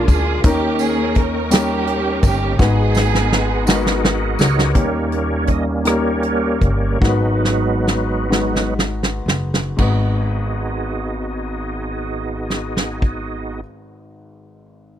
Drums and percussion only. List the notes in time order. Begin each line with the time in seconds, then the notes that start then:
0.08 kick, closed hi-hat, tambourine
0.44 kick, closed hi-hat, tambourine
0.79 closed hi-hat, tambourine
1.15 kick, closed hi-hat
1.51 snare, closed hi-hat, tambourine
1.87 closed hi-hat
2.23 kick, closed hi-hat, tambourine
2.59 kick, snare, tambourine
2.95 snare, tambourine
3.15 snare
3.32 snare
3.67 snare, tambourine
3.86 snare
4.05 snare
4.39 snare, tambourine
4.59 snare
4.75 kick, closed hi-hat
5.12 closed hi-hat
5.47 kick, closed hi-hat
5.85 cross-stick, closed hi-hat
6.23 closed hi-hat
6.61 kick, closed hi-hat
7.02 kick, snare
7.45 snare
7.87 snare
8.32 snare
8.56 snare
8.79 snare
9.03 snare
9.28 snare
9.54 snare
9.78 kick, crash
12.50 snare
12.77 snare
13.02 kick